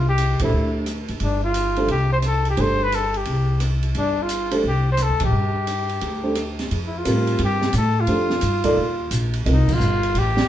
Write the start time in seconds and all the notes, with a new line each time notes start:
Already playing: C2
0.09 G4
0.18 hi-hat pedal, ride
0.39 A1 A3 D4 G4 C5, kick, ride
0.44 E4
0.53 D2
0.86 cross-stick, hi-hat pedal, ride
1.08 F#1, ride
1.20 G1 D4, ride
1.44 F4
1.54 hi-hat pedal, ride
1.76 A3 D4 G4 C5, ride
1.88 C2 G4, ride
2.13 C5
2.22 cross-stick, hi-hat pedal, ride
2.27 A4
2.45 ride
2.50 G4
2.57 G1 A3 D4 G4 C5, ride
2.83 B4
2.92 A4, hi-hat pedal, ride
3.14 G4, ride
3.25 C2, ride
3.60 cross-stick, hi-hat pedal, ride
3.83 ride
3.95 G1 D4, ride
4.23 F4
4.29 hi-hat pedal, ride
4.51 A3 D4 G4 C5, ride
4.64 C2
4.68 G4
4.92 C5
4.97 cross-stick, hi-hat pedal, ride
5.03 A4
5.09 D2
5.20 A1, kick, ride
5.25 G4
5.32 G2
5.67 hi-hat pedal, ride
5.89 ride
6.01 D2, ride
6.23 A3 D4 G4 C5
6.35 cross-stick, hi-hat pedal, ride
6.59 snare, ride
6.71 F2, ride
6.86 E4
6.98 F4
7.05 A2 G3 C4 F4 A#4, hi-hat pedal, ride
7.27 ride
7.39 G2, ride
7.44 G4
7.62 snare
7.73 A2, hi-hat pedal, ride
7.77 A4
8.00 F4
8.07 F2 A3 D4 G4 C5, ride
8.30 snare
8.41 G2, hi-hat pedal, ride
8.64 A#3 D#4 A4 D5, kick, ride
8.77 D#2
9.11 A#1, hi-hat pedal, ride
9.34 ride
9.46 C2 C4 F4 A#4 D#5, ride
9.52 D#4
9.68 muted upright bass stroke, kick, crash
9.74 F4
9.80 G1, hi-hat pedal
10.03 ride
10.15 A1 G4, ride
10.37 snare